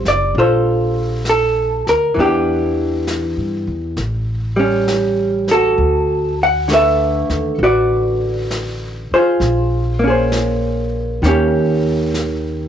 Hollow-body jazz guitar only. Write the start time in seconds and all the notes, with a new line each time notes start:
Already playing: G3 C4 F4
0.08 D5
0.38 F4 A4 C5
1.29 A4
1.89 A#4
2.14 E3
2.19 B3 D4 G4
2.25 G4
4.56 G3 C#4
5.51 F#4 A4
6.43 F#5
6.68 D3 A3
6.73 A4 B4 E5
7.63 F#4 B4 D5
9.14 F4 G#4 C5
9.99 A#3
10.04 C#4 G#4
10.10 C5
11.23 D#3 A#3 C#4
11.28 G4